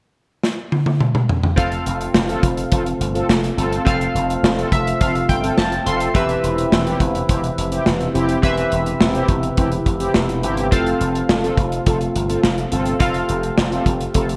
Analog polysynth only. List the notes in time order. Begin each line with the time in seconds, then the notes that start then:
2.29 C4 F4 A4
2.71 C4 F4 A4
3.14 C4 F4 A4
3.57 C4 F4 A4
4.57 C4 F4 A4
5.00 C4 F4 A4
5.43 C4 F4 A4
5.86 C4 F4 A4
6.85 C4 E4 G4
7.28 C4 E4 G4
7.71 C4 E4 G4
8.14 C4 E4 G4
9.14 C4 E4 G4
9.57 C4 E4 G4
10.00 C4 E4 G4
10.43 C4 E4 G4
11.43 C4 F4 A4
11.86 C4 F4 A4
12.29 C4 F4 A4
12.72 C4 F4 A4
13.72 C4 F4 A4
14.14 C4 F4 A4